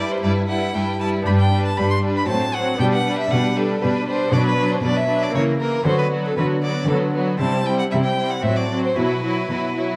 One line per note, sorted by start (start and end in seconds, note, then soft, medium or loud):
0.00 0.14 G2 soft
0.00 0.15 G2 medium
0.00 0.22 G3 soft
0.00 1.20 B3 soft
0.00 0.22 E4 soft
0.00 1.21 E4 soft
0.00 1.21 G4 soft
0.00 0.22 B4 soft
0.00 0.13 D5 medium
0.11 0.23 C5 medium
0.23 0.65 G2 soft
0.23 0.66 G2 medium
0.23 0.47 G3 soft
0.23 0.48 E4 soft
0.23 0.47 B4 soft
0.23 0.32 D5 medium
0.48 0.73 G3 soft
0.48 0.74 E4 soft
0.48 0.73 B4 soft
0.48 0.76 F#5 medium
0.74 1.17 G2 soft
0.74 1.18 G2 medium
0.74 0.99 G3 soft
0.74 0.99 E4 soft
0.74 0.99 B4 soft
0.74 1.00 G5 medium
1.00 1.25 G3 soft
1.00 1.26 E4 soft
1.00 1.25 B4 soft
1.00 1.09 A5 medium
1.22 2.24 B3 soft
1.22 2.25 D4 soft
1.22 1.50 D4 soft
1.22 2.25 G4 soft
1.22 1.50 B4 soft
1.26 1.69 G2 soft
1.26 1.70 G2 medium
1.26 1.51 G3 soft
1.26 1.31 B5 medium
1.39 1.64 G5 medium
1.51 1.76 G3 soft
1.51 1.76 D4 soft
1.51 1.76 B4 soft
1.66 1.79 A5 medium
1.77 2.20 G2 soft
1.77 2.21 G2 medium
1.77 2.02 G3 soft
1.77 2.02 D4 soft
1.77 2.02 B4 soft
1.77 1.90 B5 medium
1.90 1.98 C6 medium
2.03 2.28 G3 soft
2.03 2.28 D4 soft
2.03 2.28 B4 soft
2.17 2.27 B5 medium
2.24 2.75 C4 soft
2.24 2.77 F#4 soft
2.24 2.56 A5 medium
2.28 2.71 A2 soft
2.28 2.72 A2 medium
2.28 2.53 F#3 soft
2.28 2.53 C4 soft
2.28 2.53 C5 soft
2.54 2.80 F#3 soft
2.54 2.80 C4 soft
2.54 2.79 C5 soft
2.54 2.80 F#5 medium
2.76 4.27 B3 soft
2.76 4.28 D4 soft
2.76 4.28 G4 soft
2.76 3.04 B4 medium
2.80 3.23 B2 medium
2.80 3.22 B2 soft
2.80 3.04 G3 medium
2.80 3.05 D4 medium
2.80 2.85 G5 medium
2.93 3.18 F#5 medium
3.05 3.29 G3 soft
3.05 3.30 D4 soft
3.05 3.29 B4 medium
3.19 3.32 E5 medium
3.30 3.73 B2 soft
3.30 3.74 B2 medium
3.30 3.55 G3 medium
3.30 3.56 D4 soft
3.30 3.54 B4 medium
3.30 3.58 F#5 medium
3.56 3.80 G3 soft
3.56 3.81 D4 soft
3.56 3.83 A4 medium
3.56 3.80 B4 soft
3.81 4.25 B2 medium
3.81 4.24 B2 soft
3.81 4.06 G3 soft
3.81 4.07 D4 medium
3.81 4.05 B4 medium
3.81 4.07 B4 medium
4.06 4.32 G3 soft
4.06 4.32 D4 soft
4.06 4.31 B4 soft
4.06 4.35 C5 medium
4.28 5.29 B3 soft
4.28 5.31 F#4 soft
4.28 4.57 B4 medium
4.33 4.75 B2 soft
4.33 4.76 B2 medium
4.33 4.57 F#3 medium
4.33 4.58 D4 medium
4.33 4.46 D5 medium
4.46 4.73 B4 medium
4.58 4.83 F#3 soft
4.58 4.83 D4 medium
4.58 4.82 B4 soft
4.72 4.83 C5 medium
4.83 5.27 B2 medium
4.83 5.26 B2 soft
4.83 5.08 F#3 soft
4.83 5.08 D4 soft
4.83 5.08 B4 medium
4.83 4.98 D5 medium
4.97 5.24 E5 medium
5.09 5.34 F#3 soft
5.09 5.34 D4 medium
5.09 5.34 B4 soft
5.23 5.34 D5 medium
5.30 5.82 A#3 soft
5.30 5.83 E4 soft
5.35 5.77 C#3 soft
5.35 5.78 C#3 medium
5.35 5.60 E3 medium
5.35 5.59 A#3 soft
5.35 5.59 A#4 medium
5.35 5.43 C#5 medium
5.61 5.86 E3 medium
5.61 5.86 A#3 soft
5.61 5.85 A#4 medium
5.61 5.86 A#4 soft
5.83 6.29 D3 medium
5.83 6.28 D3 soft
5.83 6.11 F#3 medium
5.83 7.35 B3 soft
5.83 6.11 B3 medium
5.83 7.36 F#4 soft
5.83 6.11 F#4 soft
5.83 5.98 C5 medium
5.99 6.07 B4 medium
6.12 6.36 F#3 medium
6.12 6.36 B3 soft
6.12 6.36 F#4 soft
6.25 6.37 A4 medium
6.37 6.80 D3 soft
6.37 6.81 D3 medium
6.37 6.62 F#3 soft
6.37 6.62 B3 soft
6.37 6.62 F#4 medium
6.37 6.45 B4 medium
6.63 6.88 F#3 soft
6.63 6.88 B3 soft
6.63 6.87 F#4 soft
6.63 6.88 D5 medium
6.89 7.31 D3 soft
6.89 7.32 D3 medium
6.89 7.14 F#3 medium
6.89 7.13 B3 soft
6.89 7.14 F#4 soft
6.89 6.97 A4 medium
7.14 7.40 F#3 soft
7.14 7.40 B3 medium
7.14 7.40 F#4 soft
7.37 7.83 C3 medium
7.37 7.83 C3 soft
7.37 7.65 G3 medium
7.37 8.39 C4 soft
7.37 7.65 C4 medium
7.37 8.40 E4 soft
7.37 7.64 E4 medium
7.37 7.67 A5 medium
7.66 7.91 G3 soft
7.66 7.90 C4 soft
7.66 7.90 E4 soft
7.66 7.78 G5 medium
7.79 7.84 F#5 medium
7.91 8.35 C3 medium
7.91 8.35 C3 soft
7.91 8.16 G3 soft
7.91 8.17 C4 soft
7.91 8.17 E4 soft
7.91 7.97 E5 medium
8.04 8.32 G5 medium
8.18 8.43 G3 soft
8.18 8.43 C4 soft
8.18 8.44 E4 soft
8.30 8.44 F#5 medium
8.41 8.88 A2 medium
8.41 8.88 A2 soft
8.41 8.69 F#3 soft
8.41 8.94 C4 soft
8.41 8.70 C4 soft
8.41 8.94 F#4 soft
8.41 8.69 F#4 soft
8.41 8.57 E5 medium
8.56 8.83 D5 medium
8.70 8.96 F#3 soft
8.70 8.97 C4 soft
8.70 8.96 F#4 soft
8.84 8.97 C5 medium
8.94 9.41 B2 medium
8.94 9.41 B2 soft
8.94 9.22 F#3 soft
8.94 9.96 E4 soft
8.94 9.22 E4 soft
8.94 9.96 F#4 soft
8.94 9.22 F#4 medium
8.94 9.96 B4 medium
9.23 9.49 F#3 soft
9.23 9.49 E4 soft
9.23 9.49 F#4 soft
9.50 9.94 B2 medium
9.50 9.94 B2 soft
9.50 9.75 F#3 soft
9.50 9.76 E4 soft
9.50 9.75 F#4 soft
9.77 9.96 F#3 soft
9.77 9.96 E4 soft
9.77 9.96 F#4 soft